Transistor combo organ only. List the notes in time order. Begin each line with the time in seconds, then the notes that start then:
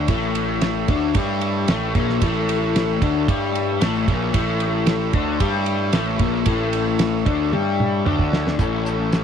Already playing: A3 E4 C#5 E5
8.59 A3 E4 C#5 E5